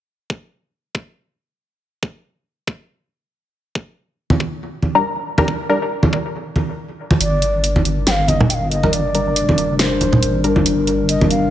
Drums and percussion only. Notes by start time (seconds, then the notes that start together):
0.30 kick
0.95 kick
2.03 kick
2.67 kick
3.75 kick
4.30 high conga
4.40 kick
4.82 high conga
5.38 high conga
5.48 kick
6.03 high conga
6.13 kick
6.56 high conga
7.11 high conga
7.21 closed hi-hat
7.42 closed hi-hat
7.64 closed hi-hat
7.76 high conga
7.85 closed hi-hat
8.07 snare, closed hi-hat
8.28 closed hi-hat, high conga
8.41 low conga
8.50 closed hi-hat
8.71 closed hi-hat
8.83 high conga
8.93 closed hi-hat
9.15 closed hi-hat
9.36 closed hi-hat
9.49 high conga
9.58 closed hi-hat
9.79 snare, closed hi-hat
10.01 closed hi-hat, high conga
10.13 low conga
10.23 closed hi-hat
10.44 closed hi-hat
10.56 high conga
10.66 closed hi-hat
10.87 closed hi-hat
11.09 closed hi-hat
11.21 high conga
11.31 closed hi-hat